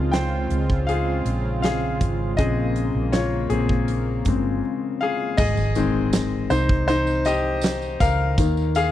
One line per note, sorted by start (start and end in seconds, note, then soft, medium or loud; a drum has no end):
0.00 0.47 C#2 medium
0.00 5.34 C#3 medium
0.00 2.40 D#3 soft
0.00 2.40 F3 soft
0.00 5.34 G#3 medium
0.00 2.35 C4 medium
0.00 2.39 C4 medium
0.00 5.34 F4 medium
0.00 0.10 G#4 medium
0.00 0.15 F5 medium
0.12 0.84 C5 medium
0.12 0.90 G5 medium
0.12 snare medium
0.12 closed hi-hat medium
0.50 1.22 C#2 medium
0.50 closed hi-hat medium
0.70 kick medium
0.87 1.60 G#4 medium
0.87 1.61 F5 medium
0.87 closed hi-hat medium
1.25 1.97 A#1 medium
1.25 closed hi-hat medium
1.62 2.35 G#4 medium
1.62 2.40 F5 medium
1.62 snare medium
1.62 closed hi-hat medium
2.01 2.36 G#1 medium
2.01 kick medium
2.01 closed hi-hat medium
2.37 2.91 A#1 medium
2.37 2.88 C#3 medium
2.37 2.88 G#3 soft
2.37 5.35 A#3 medium
2.37 2.88 C4 medium
2.37 3.10 G#4 medium
2.37 3.15 D#5 medium
2.37 kick loud
2.37 closed hi-hat medium
2.76 closed hi-hat medium
2.95 3.47 A#1 medium
3.12 3.49 F4 medium
3.12 3.52 C#5 medium
3.12 snare loud
3.12 closed hi-hat medium
3.50 4.21 A#1 medium
3.50 4.26 C4 soft
3.50 4.96 G#4 medium
3.50 closed hi-hat medium
3.69 kick medium
3.88 closed hi-hat medium
4.25 4.60 G1 medium
4.25 4.60 C#3 soft
4.25 4.60 G#3 soft
4.25 4.61 C4 soft
4.25 kick medium
4.25 closed hi-hat medium
5.01 5.37 G#4 medium
5.01 5.39 F5 medium
5.37 6.47 G#1 loud
5.37 6.10 G#4 medium
5.37 6.09 D#5 loud
5.37 kick loud
5.37 crash loud
5.37 tambourine soft
5.37 impact medium
5.57 tambourine soft
5.75 6.84 D#3 medium
5.75 6.85 G#3 medium
5.75 6.85 C4 medium
5.75 closed hi-hat medium
5.75 tambourine soft
6.13 snare loud
6.13 closed hi-hat medium
6.13 tambourine medium
6.50 7.97 C2 medium
6.50 6.86 D#4 medium
6.50 6.86 C5 medium
6.50 closed hi-hat medium
6.50 tambourine medium
6.69 kick medium
6.88 7.24 D#4 medium
6.88 7.27 C5 medium
6.88 closed hi-hat medium
6.88 tambourine medium
7.07 tambourine soft
7.25 7.97 G4 medium
7.25 8.03 D#5 loud
7.25 closed hi-hat medium
7.25 tambourine medium
7.61 snare loud
7.61 closed hi-hat medium
7.61 tambourine medium
7.82 tambourine soft
8.00 8.35 C#2 medium
8.00 8.72 A#4 medium
8.00 8.74 F5 loud
8.00 kick medium
8.00 closed hi-hat medium
8.00 tambourine soft
8.38 8.92 D#2 loud
8.38 8.92 D#3 medium
8.38 8.92 A#3 medium
8.38 kick loud
8.38 closed hi-hat medium
8.38 tambourine soft
8.57 tambourine soft
8.75 8.92 G#4 medium
8.75 8.92 F5 loud
8.75 closed hi-hat medium
8.75 tambourine medium